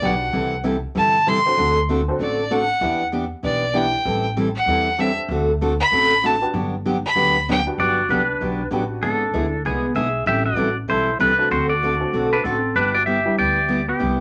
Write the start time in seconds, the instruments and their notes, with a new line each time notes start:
0.02 upright bass B1, steel-string acoustic guitar D3 F#3 B3 D4 G4, honky-tonk piano B3 D4 F#4 G4 B4, fiddle F#5
0.32 upright bass C2, steel-string acoustic guitar C3 E3 G3 C4 E4 A4
0.63 steel-string acoustic guitar C3 E3 G3 C4 E4 A4
0.95 upright bass G1, steel-string acoustic guitar C3 E3 G3 C4 E4 A4, fiddle A5
1.26 steel-string acoustic guitar C3 E3 G3 C4 E4 A4, fiddle C6
1.46 honky-tonk piano C4 D4 F#4 A4 C5
1.57 upright bass D2, steel-string acoustic guitar D3 A3 C4 F#4 A4
1.89 steel-string acoustic guitar D3 A3 C4 F#4 A4
2.08 honky-tonk piano C4 D4 F#4 A4 C5
2.19 upright bass A1, steel-string acoustic guitar D3 A3 C4 F#4 A4, fiddle D5
2.51 steel-string acoustic guitar D3 A3 C4 F#4 A4, fiddle F#5
2.81 upright bass E2, steel-string acoustic guitar E3 B3 D4 G4, honky-tonk piano B3 D4 E4 G4 B4
3.12 steel-string acoustic guitar E3 B3 D4 G4
3.43 upright bass B1, steel-string acoustic guitar E3 B3 D4 G4, fiddle D5
3.73 steel-string acoustic guitar E3 B3 D4 G4, honky-tonk piano B3 D4 E4 G4 B4, fiddle G5
4.05 upright bass A1, steel-string acoustic guitar E3 G3 C4 E4 A4
4.37 steel-string acoustic guitar E3 G3 C4 E4 A4
4.55 fiddle F#5
4.66 upright bass E2, steel-string acoustic guitar E3 G3 C4 E4 A4
4.98 steel-string acoustic guitar E3 G3 C4 E4 A4, honky-tonk piano C4 D4 G4 A4 B4, fiddle E5
5.29 upright bass D2, steel-string acoustic guitar D3 A3 C4 F#4 A4
5.61 steel-string acoustic guitar D3 A3 C4 F#4 A4
5.80 fiddle B5
5.92 upright bass A1, steel-string acoustic guitar D3 A3 C4 F#4 A4
6.23 steel-string acoustic guitar D3 A3 C4 F#4 A4, fiddle A5
6.41 honky-tonk piano B3 D4 F#4 G4 B4
6.53 upright bass G1, steel-string acoustic guitar D3 F#3 B3 D4 G4
6.85 steel-string acoustic guitar D3 F#3 B3 D4 G4
7.05 fiddle B5
7.15 upright bass D2, steel-string acoustic guitar D3 F#3 B3 D4 G4
7.48 steel-string acoustic guitar D3 F#3 B3 D4 G4, fiddle G5
7.67 honky-tonk piano B3 D4 F#4 G4 B4
7.78 upright bass G1, steel-string acoustic guitar D3 F#3 B3 D4 G4, electric slide guitar F#4 D5
8.09 upright bass C2, steel-string acoustic guitar D3 F#3 B3 D4 G4, electric slide guitar D4 B4
8.41 upright bass B1, steel-string acoustic guitar D3 F#3 B3 D4 G4
8.71 upright bass A1, steel-string acoustic guitar D3 F#3 B3 D4 G4, honky-tonk piano B3 D4 F#4 G4 B4
9.02 upright bass G#1, steel-string acoustic guitar D3 G#3 B3 E4 G#4, electric slide guitar D4 A4
9.34 upright bass D2, steel-string acoustic guitar D3 G#3 B3 E4 G#4, honky-tonk piano B3 D4 E4 G#4 B4
9.65 upright bass C2, steel-string acoustic guitar D3 G#3 B3 E4 G#4, electric slide guitar B3 G#4
9.95 upright bass B1, steel-string acoustic guitar D3 G#3 B3 E4 G#4, electric slide guitar G#4 E5
10.26 upright bass A1, steel-string acoustic guitar E3 G3 C4 E4 A4, electric slide guitar G4 E5
10.46 electric slide guitar F#4 D5
10.55 upright bass A1, steel-string acoustic guitar E3 G3 C4 E4 A4
10.88 upright bass B1, steel-string acoustic guitar E3 G3 C4 E4 A4, electric slide guitar E4 C5
11.19 upright bass C2, steel-string acoustic guitar E3 G3 C4 E4 A4, electric slide guitar D4 B4
11.38 honky-tonk piano A3 C4 D4 F#4 A4
11.51 upright bass D2, steel-string acoustic guitar D3 A3 C4 F#4 A4, electric slide guitar F#4 C5
11.69 electric slide guitar F#4 D5
11.83 steel-string acoustic guitar D3 A3 C4 F#4 A4
12.00 honky-tonk piano A3 C4 D4 F#4 A4
12.13 upright bass B1, steel-string acoustic guitar D3 A3 C4 F#4 A4
12.33 electric slide guitar D4 B4
12.44 upright bass A1, steel-string acoustic guitar D3 A3 C4 F#4 A4, electric slide guitar C4 A4
12.75 upright bass G1, steel-string acoustic guitar G3 B3 E4 G4, electric slide guitar D4 B4
12.94 electric slide guitar F#4 D5
13.06 steel-string acoustic guitar G3 B3 E4 G4, electric slide guitar G4 E5
13.25 honky-tonk piano G3 B3 D4 E4 G4
13.38 upright bass D2, steel-string acoustic guitar G3 B3 E4 G4, electric slide guitar G4 D5
13.68 steel-string acoustic guitar G3 B3 E4 G4
13.88 electric slide guitar B3 G4
13.99 upright bass C2, steel-string acoustic guitar C3 G3 B3 E4 G4